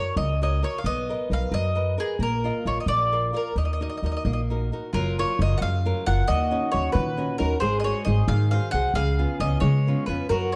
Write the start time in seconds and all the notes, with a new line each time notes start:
Already playing: F#4 A#4 C#5
0.16 C#2 C#3 D#5
0.42 F#4 A#4 C#5 D#5
0.62 F#4 A#4 C#5
0.78 F5
0.84 B1 B3 D#5
1.09 A#4 B4 D#5
1.30 B1 A#4 B4 D#5 F5
1.51 F#2 F#3 D#5
1.75 A#4 B4 D#5
1.98 G#4 A#4 B4 D#5
2.19 A#1 A#3 A#4
2.44 F4 A#4 D#5
2.65 A#1 F4 A#4 C#5 D#5
2.80 D#5
2.86 A#1 A#3 D5
3.12 F4 A#4 D5
3.33 F4 A#4 D5
3.56 D#2 D#3 D#5
3.65 D#5
3.73 D#5
3.81 D#4 F#4 A#4 D#5
3.90 D#5
3.97 D#5
4.02 D#2 D#4 F#4 A#4 D#5
4.12 D#5
4.17 D#5
4.25 A#1 A#3 D#5
4.33 D#5
4.50 D#4 F#4 A#4
4.72 D#4 F#4 A#4
4.93 F#1 F#3 F4 A#4
5.19 F#3 F4 A#4 C#5
5.39 F#1 F#3 F4 A#4 D#5
5.58 F#2 F#5
5.62 C#3 F5
5.85 F#3 F4 A#4
6.06 F#1 F4 F#4 A#4 F#5
6.27 D#2 D#3 F#4 D#5
6.51 C#4 D#4 F#4
6.72 D#2 C#4 D#4 F#4 C#5
6.92 A#2 D#3 B4
7.17 C#4 D#4 F#4
7.38 D#2 C#4 D#4 F#4 A#4
7.60 G#1 G#3 G#4 C5
7.80 D#5
7.84 F#4 G#4 C5 C#5
8.05 G#1 F#4 G#4 C5 D#5
8.28 G#2 D#3 F5
8.51 F#4 G#4 C5 F5
8.71 C2 F#4 G#4 C5 F#5
8.94 C#2 C#3 G#4 F5
9.19 B3 C#4 F4
9.40 C#2 B3 C#4 F4 D#5
9.60 C#3 G#3 C#5
9.87 B3 C#4 F4
10.06 F2 B3 C#4 F4 B4
10.29 F#2 F#3 F#4 A#4
10.52 C#5